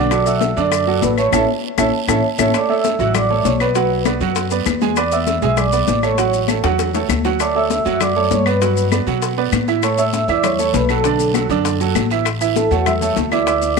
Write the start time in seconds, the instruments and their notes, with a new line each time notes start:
Already playing: upright bass B1
0.11 upright piano F#3 F#4 A4, vibraphone D5 D6, high bongo, high conga, long guiro, claves, maracas
0.26 upright piano F#3 F#4 A4, vibraphone E5 E6, high bongo, high conga, maracas
0.41 high bongo, high conga, short guiro, maracas
0.56 upright bass F#2, upright piano D3 D4 D5, vibraphone D5 D6, short guiro, maracas
0.72 high bongo, high conga, long guiro, claves, maracas
0.87 upright piano F#3 F#4 A4, high bongo, high conga
1.02 upright bass A1, vibraphone B4 B5, high bongo, low bongo, high conga, short guiro, maracas
1.17 upright piano A3 A4 C#5, vibraphone C#5 C#6, high bongo, high conga, short guiro, claves, maracas
1.32 upright bass A1, upright piano C#4 E4 A4, vibraphone C#5 E5 A5, high bongo, high conga, long guiro, claves, maracas
1.78 upright bass A1, upright piano C#4 E4 A4, vibraphone C#5 E5 A5, high bongo, high conga, long guiro, claves, maracas
2.08 upright bass A1, upright piano C#4 E4 A4, vibraphone C#5 E5 A5, high bongo, high conga, long guiro, claves, maracas
2.38 upright bass A1, upright piano C#4 E4 A4, vibraphone C#5 E5 A5, high bongo, high conga, long guiro, claves, maracas
2.54 upright piano A3 A4 C#5, vibraphone D5 D6, high bongo, high conga, long guiro, claves, maracas
2.69 upright piano A3 A4 C#5, vibraphone E5 E6, high conga
2.84 high bongo, high conga, short guiro, maracas
2.99 upright bass A1, upright piano F#3 F#4 F#5, high bongo, high conga, short guiro, maracas
3.15 vibraphone D5 D6, high bongo, high conga, low conga, long guiro, claves, maracas
3.30 upright piano A3 A4 C#5, high bongo, high conga, low conga
3.45 upright bass B1, vibraphone C#5 C#6, high bongo, low bongo, high conga, short guiro, maracas
3.60 upright piano B3 B4 D5, vibraphone B4 B5, high bongo, short guiro, claves, maracas
3.75 upright piano F#3 F#4 F#5, high bongo, high conga, long guiro, maracas
3.90 high conga
4.05 upright piano B3 B4 D5, high bongo, high conga, short guiro, claves, maracas
4.20 upright bass F#2, upright piano F#3 F#4 F#5, high bongo, high conga, short guiro, maracas
4.36 high bongo, high conga, long guiro, maracas
4.51 upright piano B3 B4 D5, high bongo, high conga, maracas
4.66 upright bass E2, high bongo, low bongo, high conga, short guiro, claves, maracas
4.81 upright piano G#3 G#4 G#5, high bongo, high conga, short guiro, maracas
4.96 upright piano B3 B4 D5, vibraphone D5 D6, high bongo, high conga, long guiro, claves, maracas
5.12 upright piano B3 B4 D5, vibraphone E5 E6, high conga, maracas
5.27 high bongo, high conga, short guiro, maracas
5.42 upright bass B1, upright piano G#3 G#4 G#5, vibraphone E5 E6, high bongo, high conga, short guiro, maracas
5.57 vibraphone D5 D6, high bongo, high conga, low conga, long guiro, claves, maracas
5.72 upright piano B3 B4 D5, high bongo, high conga, maracas
5.87 upright bass A1, high bongo, low bongo, high conga, short guiro, maracas
6.03 upright piano A3 A4 C#5, vibraphone C#5 C#6, high bongo, high conga, short guiro, claves, maracas
6.18 upright piano F#3 F#4 F#5, high bongo, high conga, long guiro, maracas
6.33 high conga, maracas
6.48 upright piano A3 A4 C#5, high bongo, high conga, short guiro, claves, maracas
6.63 upright bass E2, upright piano F#3 F#4 F#5, high bongo, high conga, short guiro, maracas
6.78 high bongo, high conga, long guiro, maracas
6.94 upright piano A3 A4 C#5, low bongo, high conga, maracas
7.09 upright bass D2, low bongo, high conga, short guiro, claves, maracas
7.24 upright piano F#3 F#4 F#5, low bongo, short guiro, maracas
7.40 upright piano A3 A4 C#5, vibraphone D5 D6, high bongo, high conga, long guiro, claves, maracas
7.55 upright piano A3 A4 C#5, vibraphone E5 E6, high conga
7.70 high bongo, high conga, short guiro, maracas
7.85 upright bass F#2, upright piano F#3 F#4 F#5, high bongo, high conga, short guiro, maracas
8.00 vibraphone D5 D6, high bongo, high conga, low conga, long guiro, claves, maracas
8.16 upright piano A3 A4 C#5, high bongo, high conga
8.31 upright bass G2, vibraphone C#5 C#6, high bongo, low bongo, high conga, short guiro, maracas
8.46 upright piano B3 B4 D5, vibraphone B4 B5, high bongo, short guiro, claves, maracas
8.61 upright piano F#3 F#4 F#5, high bongo, long guiro, maracas
8.77 high conga, maracas
8.91 upright piano B3 B4 D5, high bongo, high conga, short guiro, claves, maracas
9.07 upright bass B2, upright piano F#3 F#4 F#5, high bongo, high conga, short guiro, maracas
9.22 high bongo, high conga, long guiro, maracas
9.38 upright piano B3 B4 D5, high bongo, high conga
9.52 upright bass A2, high bongo, low bongo, high conga, short guiro, claves, maracas
9.68 upright piano E3 E4 E5, high bongo, short guiro, maracas
9.83 upright piano A3 A4 C#5, vibraphone C#5 C#6, high bongo, long guiro, claves, maracas
9.98 upright piano A3 A4 C#5, vibraphone E5 E6, high conga, maracas
10.13 high bongo, high conga, short guiro, maracas
10.28 upright bass E2, upright piano E3 E4 E5, vibraphone D5 D6, high bongo, high conga, short guiro, maracas
10.44 vibraphone C#5 C#6, high bongo, high conga, low conga, long guiro, claves, maracas
10.59 upright piano A3 A4 C#5, high bongo, high conga, maracas
10.73 upright bass B1, vibraphone B4 B5, high bongo, low bongo, high conga, short guiro, maracas
10.89 upright piano F#3 F#4 A4, vibraphone A4 A5, high bongo, short guiro, claves, maracas
11.04 upright piano D3 D4 D5, high bongo, long guiro, maracas
11.19 high conga, maracas
11.34 upright piano F#3 F#4 A4, high bongo, high conga, short guiro, claves, maracas
11.49 upright bass F#2, upright piano D3 D4 D5, high bongo, short guiro, maracas
11.65 high bongo, high conga, long guiro, maracas
11.80 upright piano F#3 F#4 A4, high bongo, high conga, maracas
11.95 upright bass A1, high bongo, low bongo, high conga, short guiro, claves, maracas
12.10 upright piano E3 E4 E5, high bongo, short guiro, maracas
12.25 high bongo, high conga, long guiro, claves, maracas
12.41 upright piano E3 E4 E5, high conga, maracas
12.56 vibraphone A4 A5, high bongo, high conga, short guiro, maracas
12.71 upright bass E2, upright piano A3 A4 C#5, vibraphone F#4 F#5, high bongo, high conga, short guiro, maracas
12.86 vibraphone E5 E6, high bongo, high conga, low conga, long guiro, claves, maracas
13.01 upright piano A3 A4 C#5, high bongo, high conga, low conga, maracas
13.16 upright bass D2, high bongo, low bongo, high conga, short guiro, maracas
13.31 upright piano E3 E4 E5, vibraphone D5 D6, high bongo, short guiro, claves, maracas
13.47 upright piano E3 E4 E5, high bongo, high conga, long guiro, maracas
13.62 high conga, maracas